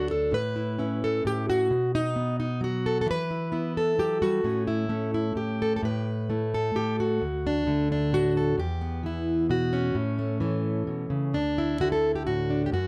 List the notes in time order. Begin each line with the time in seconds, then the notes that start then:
Already playing: D2 D3 F#3 D4
0.11 A4
0.32 A2 B4
0.56 E4
0.78 C#4 E4
1.04 A4
1.25 A2 G4
1.50 F#4
1.71 B2
1.95 D#4
2.16 B3
2.40 D#4
2.61 F#3 F#4
2.86 A4
3.01 A4
3.06 E3
3.11 B4
3.31 E4
3.52 B3 E4
3.77 A4
3.99 F#3 G4
4.22 G3 F#4
4.44 A2 A3 C#4
4.67 E4
4.89 A3 C#4
5.14 E4
5.35 A2 G4
5.62 A4
5.76 A4
5.83 A2 B4
6.30 A3 E4
6.54 A4
6.75 A2 G4
7.00 F#4
7.22 D2
7.47 D4
7.67 D3 A3
7.92 D4
8.12 A2 F#4
8.37 A4
8.58 E2 G4
8.81 B3
9.03 E3 E4
9.49 B2 F#4
9.73 C#4
9.95 A2
10.19 A3
10.40 E3 A3
10.87 B2
11.10 C#3
11.33 D2 D4
11.58 E4
11.80 D3 F#4
11.92 A4
12.15 G4
12.27 A2 F#4
12.50 D4
12.66 G4
12.72 F#2 F#4